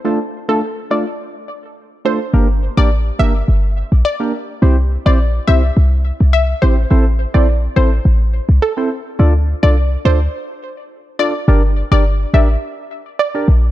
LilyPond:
<<
  \new Staff \with { instrumentName = "Synth pluck" } { \time 4/4 \key g \dorian \tempo 4 = 105 r8. a'8 r16 d''8 r4. c''16 r16 | r8. d''8 r16 e''8 r4 d''8. r16 | r8. d''8 r16 e''8 r4 e''16 r16 c''16 r16 | r8. d''8 r16 c''8 r4 a'8. r16 |
r8. d''8 r16 c''8 r4. d''16 r16 | r8. d''8 r16 e''8 r4 d''8. r16 | }
  \new Staff \with { instrumentName = "Synth stab" } { \time 4/4 \key g \dorian <a d' f' a'>16 r8 <a d' f' a'>16 r8 <a d' f' a'>16 r4. r16 <a d' f' a'>16 r16 | <bes d' g' bes'>16 r8 <bes d' g' bes'>16 r8 <bes d' g' bes'>16 r4. <bes d' g' bes'>16 r8 | <c' e' g' c''>16 r8 <c' e' g' c''>16 r8 <c' e' g' c''>16 r4. r16 <c' e' g' c''>16 r16 | <c' e' a' c''>16 r8 <c' e' a' c''>16 r8 <c' e' a' c''>16 r4. <c' e' a' c''>16 r8 |
<d' f' a' d''>16 r8 <d' f' a' d''>16 r8 <d' f' a' d''>16 r4. r16 <d' f' a' d''>16 r16 | <d' g' bes' d''>16 r8 <d' g' bes' d''>16 r8 <d' g' bes' d''>16 r4. <d' g' bes' d''>16 r8 | }
  \new Staff \with { instrumentName = "808-style bass" } { \clef bass \time 4/4 \key g \dorian r1 | g,,8. a,,8. g,,8 g,,8. bes,,16 r4 | c,8. bes,,8. c,8 c,8. c,8. a,,8 | a,,8. bes,,8. a,,8 a,,8. c,16 r4 |
d,8. c,8. d,8 r2 | g,,8. g,,8. a,,8 r4. bes,,8 | }
>>